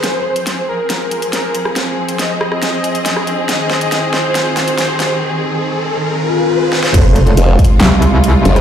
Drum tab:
CC |--------------------------------|--------------------------------|--------------------------------|--------------------------------|
HH |x-----x-x-------x---x-x-x---x---|x-----x-x-------x---x-x-x---x---|x-----x-x-------x---x-x-x---x---|--------------------------------|
CP |--------------------------------|--------------------------------|--------------------------------|--------------------------------|
SD |o-------o-------o-------o-----r-|o-------o---r-r-o-------o-r-----|o---o---o---o---o---o---o---o---|----------------------------o-o-|
BD |--------------------------------|--------------------------------|--------------------------------|--------------------------------|

CC |x-------------------------------|
HH |x---x-x-x---xx--x---x---x---x-x-|
CP |----------------x---------------|
SD |----------------o-------------r-|
BD |o-----------o-------------------|